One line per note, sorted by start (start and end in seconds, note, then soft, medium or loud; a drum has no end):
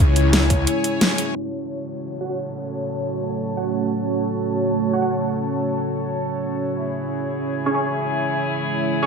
0.00 0.66 C#2 medium
0.00 1.31 G#3 medium
0.00 1.31 C#4 medium
0.00 1.31 E4 medium
0.00 2.63 E4 medium
0.00 1.35 G#4 medium
0.00 1.31 C#5 medium
0.00 9.06 C#5 medium
0.00 1.35 G#5 medium
0.16 closed hi-hat medium
0.33 snare loud
0.33 closed hi-hat medium
0.50 kick medium
0.50 closed hi-hat medium
0.67 closed hi-hat medium
0.84 closed hi-hat medium
1.01 snare loud
1.01 closed hi-hat loud
1.18 closed hi-hat medium
1.35 6.77 A3 medium
1.35 9.06 C#4 medium
1.35 7.96 F#4 medium
1.35 6.77 F#4 medium
1.35 6.77 C#5 medium
1.35 downlifter medium
1.46 6.81 A4 medium
2.21 2.28 F#4 medium
2.21 2.28 C#5 medium
2.21 2.28 F#5 loud
2.29 2.37 F#4 medium
2.29 2.37 C#5 medium
2.29 2.37 F#5 medium
2.34 6.81 A5 medium
3.57 3.70 F#4 medium
3.57 3.70 C#5 medium
3.57 3.70 F#5 medium
4.93 5.01 F#4 medium
4.93 5.01 C#5 medium
4.93 5.01 F#5 loud
5.02 5.10 F#4 medium
5.02 5.10 C#5 medium
5.02 5.10 F#5 medium
6.81 9.06 G#3 medium
6.81 9.06 E4 medium
6.81 9.06 C#5 medium
6.85 9.06 G#4 medium
7.33 9.06 G#5 medium
7.66 7.73 C#4 medium
7.66 7.73 G#4 medium
7.66 7.73 C#5 loud
7.75 7.83 C#4 medium
7.75 7.83 G#4 medium
7.75 7.83 C#5 medium
9.02 9.06 C#4 medium
9.02 9.06 G#4 medium
9.02 9.06 C#5 medium